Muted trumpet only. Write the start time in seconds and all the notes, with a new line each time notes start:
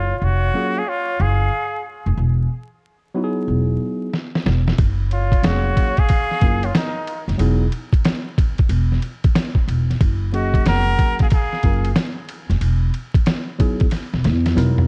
Already playing: F4
0.18 F4
0.24 F#4
0.79 G#4
0.89 F4
1.22 G#4
5.13 F4
5.46 F#4
6.00 G#4
6.66 F4
6.77 D#4
10.35 F#4
10.68 A#4
11.22 G#4
11.34 G#4